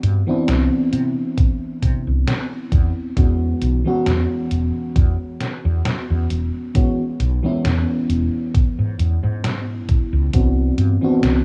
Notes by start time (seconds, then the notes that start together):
0.03 G2, closed hi-hat
0.27 E3 B3 C4 D4 E4, muted fretless electric bass stroke
0.48 C2, snare, closed hi-hat
0.93 C3, closed hi-hat
1.38 kick, closed hi-hat
1.82 C3, kick, closed hi-hat
2.07 C2
2.27 snare, closed hi-hat
2.72 E2, kick, closed hi-hat
3.16 E2 E3 G#3 B3 C#4 F#4, kick, closed hi-hat
3.62 B1, closed hi-hat
3.84 E3 G#3 B3 C#4 F#4
4.06 E2, snare, closed hi-hat
4.51 E1, closed hi-hat
4.96 E2, kick, closed hi-hat
5.41 snare, closed hi-hat
5.65 E2
5.85 snare, closed hi-hat
6.10 E2
6.30 E1, closed hi-hat
6.74 E3 G#3 B3 C#4 F#4, kick, closed hi-hat
7.20 B1, closed hi-hat
7.43 E3 G#3 B3 C#4 E4
7.65 E2, snare, closed hi-hat
8.09 E1, closed hi-hat
8.55 kick, closed hi-hat
8.79 G#2
8.99 E2, closed hi-hat
9.23 G#2
9.44 snare, closed hi-hat
9.89 kick, closed hi-hat
10.13 C#2
10.33 C2 E3 B3 C4 D4 F#4, kick, closed hi-hat
10.78 G2, closed hi-hat
11.01 E3 B3 C4 D4 F#4
11.23 C2, snare, closed hi-hat